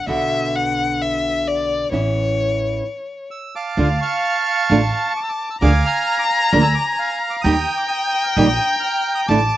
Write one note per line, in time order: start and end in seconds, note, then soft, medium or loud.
0.00 0.08 B3 medium
0.07 1.82 B1 medium
0.07 1.90 B2 medium
0.07 1.91 D3 medium
0.07 1.91 B3 medium
0.07 1.91 F#4 medium
0.07 0.57 E5 medium
0.55 1.03 F#5 medium
1.01 1.49 E5 medium
1.47 1.92 D5 medium
1.91 2.79 A1 medium
1.91 2.82 E3 medium
1.91 2.83 B3 medium
1.91 2.83 C#4 medium
1.91 2.84 E4 medium
1.91 3.27 C#5 medium
3.31 3.55 E6 medium
3.55 4.01 F5 medium
3.55 4.00 A5 medium
3.55 3.98 D6 medium
3.77 3.97 D2 medium
3.77 3.86 D3 medium
3.77 3.87 A3 medium
3.77 3.87 D4 medium
3.77 3.87 F4 medium
3.77 4.71 F5 medium
4.01 5.13 F5 medium
4.01 5.13 A5 medium
4.01 5.20 C#6 loud
4.70 4.89 A1 medium
4.70 4.79 D3 medium
4.70 4.79 A3 loud
4.70 4.80 D4 medium
4.70 4.80 F4 medium
4.70 5.61 A5 medium
5.17 5.23 D6 medium
5.23 5.30 E6 medium
5.29 5.49 D6 medium
5.50 5.55 E6 medium
5.61 5.81 D2 medium
5.61 5.70 D3 medium
5.61 5.71 F3 medium
5.61 5.71 A#3 medium
5.61 5.71 D4 medium
5.61 5.71 G#4 medium
5.61 6.50 F5 medium
5.61 5.85 G#5 medium
5.61 7.46 A#5 loud
5.61 5.85 D6 loud
5.85 6.30 G#5 medium
5.85 6.30 A#5 medium
5.85 6.17 F6 loud
6.19 6.24 D6 medium
6.29 7.19 G#5 medium
6.29 6.95 A#5 medium
6.29 6.62 F6 medium
6.53 6.72 D2 loud
6.53 6.62 D3 medium
6.53 6.62 F3 medium
6.53 6.62 A#3 medium
6.53 6.62 D4 loud
6.53 6.62 G#4 medium
6.62 6.74 E6 medium
6.75 6.85 D6 medium
6.97 7.42 F5 medium
6.97 7.30 A#5 medium
7.30 7.36 D6 medium
7.41 7.64 D#2 loud
7.41 7.54 D#3 medium
7.41 7.89 G5 medium
7.41 9.30 G5 loud
7.41 7.90 A#5 medium
7.41 7.79 D#6 loud
7.46 7.54 G3 medium
7.46 7.54 A#3 medium
7.46 7.54 D#4 medium
7.46 7.54 G4 loud
7.77 7.83 D6 medium
7.88 8.37 G5 medium
7.88 8.37 A#5 medium
7.88 8.25 D#6 medium
8.24 8.35 F6 medium
8.36 8.56 A#1 loud
8.36 8.46 D#3 medium
8.36 8.46 G3 loud
8.36 8.46 A#3 loud
8.36 8.46 D#4 loud
8.36 8.46 G4 medium
8.36 9.26 G5 medium
8.36 8.82 A#5 medium
8.36 8.69 D#6 loud
8.70 8.75 G6 medium
8.80 9.26 A#5 medium
8.80 9.13 F6 loud
9.15 9.21 D#6 medium
9.27 9.48 A1 medium
9.27 9.38 D3 medium
9.27 9.38 A3 medium
9.27 9.38 D4 medium
9.27 9.39 E4 medium
9.27 9.57 A5 loud
9.27 9.57 A5 medium
9.27 9.57 D6 loud